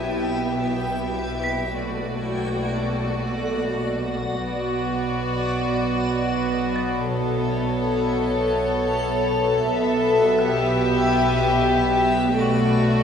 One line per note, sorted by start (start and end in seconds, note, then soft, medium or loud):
0.00 4.39 B1 soft
0.00 4.39 B2 soft
0.00 1.74 B3 soft
0.00 1.77 E4 soft
0.00 1.74 G4 soft
0.00 1.79 B4 soft
0.00 1.74 E5 soft
0.00 1.78 G5 soft
1.44 3.39 B6 soft
1.77 4.39 A3 soft
1.77 4.39 F#4 soft
1.77 7.08 F#4 soft
1.77 7.07 D5 soft
1.77 4.39 D5 soft
1.77 7.08 F#5 soft
4.43 9.70 B1 soft
4.43 9.70 B2 soft
4.43 9.70 B3 soft
4.43 7.04 F#4 soft
4.43 7.04 D5 soft
6.76 8.71 A6 soft
7.07 9.74 A4 medium
7.07 10.37 A4 medium
7.07 9.74 C#5 medium
7.07 9.74 C#5 soft
7.07 12.41 E5 medium
9.73 13.03 B1 medium
9.73 13.03 B2 medium
9.73 12.37 B3 medium
9.73 12.41 G4 medium
9.73 12.41 B4 medium
9.73 12.36 E5 soft
10.39 12.41 G4 medium
10.39 12.36 F#6 soft
12.40 13.03 A3 soft
12.40 13.03 F#4 soft
12.40 13.03 A4 medium
12.40 13.03 D5 soft